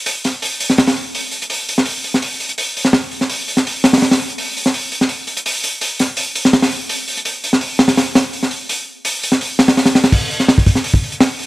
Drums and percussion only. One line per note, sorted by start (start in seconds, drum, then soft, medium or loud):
0.06 open hi-hat medium
0.24 snare soft
0.24 open hi-hat medium
0.42 open hi-hat medium
0.60 open hi-hat medium
0.70 snare soft
0.78 snare loud
0.78 open hi-hat medium
0.87 snare loud
0.87 open hi-hat medium
0.97 open hi-hat medium
1.15 open hi-hat medium
1.31 open hi-hat medium
1.42 closed hi-hat soft
1.50 open hi-hat medium
1.69 open hi-hat medium
1.78 snare medium
1.85 open hi-hat medium
2.04 open hi-hat medium
2.14 snare soft
2.22 open hi-hat medium
2.40 open hi-hat medium
2.49 closed hi-hat soft
2.58 open hi-hat medium
2.77 open hi-hat medium
2.85 snare medium
2.93 snare loud
2.93 open hi-hat medium
3.11 open hi-hat medium
3.21 snare soft
3.30 open hi-hat medium
3.48 open hi-hat medium
3.57 snare medium
3.67 open hi-hat medium
3.84 snare medium
3.84 open hi-hat medium
3.93 snare medium
3.93 open hi-hat medium
3.97 snare medium
3.97 open hi-hat medium
4.02 snare medium
4.02 open hi-hat medium
4.11 snare medium
4.11 open hi-hat medium
4.21 open hi-hat medium
4.30 closed hi-hat soft
4.38 open hi-hat medium
4.56 open hi-hat medium
4.66 snare medium
4.74 open hi-hat medium
4.92 open hi-hat medium
5.01 snare medium
5.09 open hi-hat medium
5.27 open hi-hat medium
5.37 closed hi-hat soft
5.46 open hi-hat medium
5.64 open hi-hat medium
5.81 open hi-hat medium
5.99 snare soft
5.99 open hi-hat medium
6.17 open hi-hat medium
6.35 open hi-hat medium
6.45 snare medium
6.53 snare medium
6.53 open hi-hat medium
6.62 snare loud
6.62 open hi-hat medium
6.72 open hi-hat medium
6.89 open hi-hat medium
7.08 open hi-hat medium
7.17 closed hi-hat soft
7.25 open hi-hat medium
7.44 open hi-hat medium
7.53 snare medium
7.61 open hi-hat medium
7.79 snare loud
7.79 open hi-hat medium
7.88 snare loud
7.88 open hi-hat medium
7.96 snare loud
7.96 open hi-hat medium
8.15 snare loud
8.15 open hi-hat medium
8.33 open hi-hat medium
8.43 snare soft
8.51 open hi-hat medium
8.69 open hi-hat medium
9.05 open hi-hat medium
9.23 open hi-hat medium
9.32 snare medium
9.41 open hi-hat medium
9.59 snare medium
9.59 open hi-hat medium
9.68 snare loud
9.68 open hi-hat medium
9.77 snare medium
9.77 open hi-hat medium
9.86 snare medium
9.86 open hi-hat medium
9.95 snare loud
9.95 open hi-hat medium
10.04 snare loud
10.04 open hi-hat medium
10.12 kick loud
10.12 open hi-hat medium
10.12 crash medium
10.31 open hi-hat medium
10.40 snare medium
10.48 snare loud
10.48 open hi-hat medium
10.58 kick loud
10.66 kick medium
10.66 open hi-hat medium
10.75 snare medium
10.84 open hi-hat loud
10.94 kick loud
11.04 open hi-hat medium
11.12 closed hi-hat soft
11.21 snare loud
11.21 open hi-hat medium
11.39 open hi-hat medium